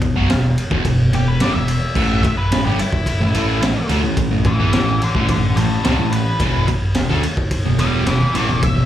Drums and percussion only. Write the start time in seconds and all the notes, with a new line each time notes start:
0.02 kick, ride
0.30 snare, ride
0.58 ride
0.71 kick
0.85 kick, ride
1.13 ride
1.40 snare, ride
1.68 ride
1.95 kick, crash
2.23 kick, ride
2.52 snare, ride
2.79 ride
2.92 kick
3.06 kick, ride
3.34 ride
3.62 snare, ride
3.89 ride
4.17 kick, ride
4.45 kick, ride
4.73 snare, ride
5.02 ride
5.15 kick
5.29 kick, ride
5.57 ride
5.84 snare, ride
6.12 ride
6.40 kick, ride
6.67 kick, ride
6.95 snare, ride
7.10 snare
7.23 ride
7.37 kick
7.51 kick, ride
7.79 ride
8.06 snare, ride
8.35 ride
8.63 kick, ride